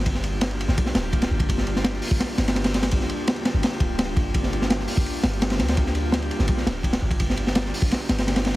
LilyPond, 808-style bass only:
\new Staff \with { instrumentName = "808-style bass" } { \clef bass \time 4/4 \key g \minor \tempo 4 = 168 g,,4.~ g,,16 g,,16 r8 d,,4 g,,8~ | g,,4. r16 g,,16 r8 g,,4.~ | g,,8 r4 r16 g,,16 r8 d,,4 g,,8~ | g,,4. r16 g,,16 r8 g,,4 d,8~ |
d,4. r16 g,,16 r8 d,,4 g,,8~ | g,,4. r16 g,,16 r8 g,,4. | }